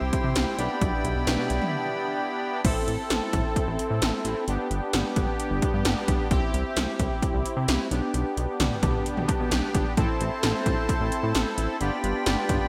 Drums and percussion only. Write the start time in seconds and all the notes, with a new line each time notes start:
0.13 kick, closed hi-hat
0.35 snare, closed hi-hat
0.59 closed hi-hat
0.81 kick, closed hi-hat
1.05 closed hi-hat
1.27 snare, closed hi-hat
1.50 closed hi-hat
1.62 mid tom
2.65 kick, closed hi-hat, crash
2.88 closed hi-hat
3.10 snare, closed hi-hat
3.33 kick, closed hi-hat
3.56 kick, closed hi-hat
3.79 closed hi-hat
4.02 snare, closed hi-hat
4.25 closed hi-hat
4.48 closed hi-hat
4.71 closed hi-hat
4.93 snare, closed hi-hat
5.16 kick, closed hi-hat
5.40 closed hi-hat
5.62 kick, closed hi-hat
5.85 snare, closed hi-hat
6.08 kick, closed hi-hat
6.31 kick, closed hi-hat
6.54 closed hi-hat
6.76 snare, closed hi-hat
6.99 kick, closed hi-hat
7.22 kick, closed hi-hat
7.46 closed hi-hat
7.68 snare, closed hi-hat
7.91 closed hi-hat
8.14 closed hi-hat
8.37 closed hi-hat
8.60 snare, closed hi-hat, mid tom
8.83 kick, closed hi-hat, mid tom, cowbell
9.06 closed hi-hat
9.17 mid tom
9.28 kick, closed hi-hat, cowbell
9.51 snare, closed hi-hat
9.75 kick, closed hi-hat
9.97 kick, closed hi-hat
10.21 closed hi-hat
10.43 snare, closed hi-hat
10.66 kick, closed hi-hat
10.89 kick, closed hi-hat
11.12 closed hi-hat
11.35 snare, closed hi-hat
11.58 closed hi-hat
11.81 closed hi-hat
12.04 closed hi-hat
12.26 snare, closed hi-hat
12.49 kick, closed hi-hat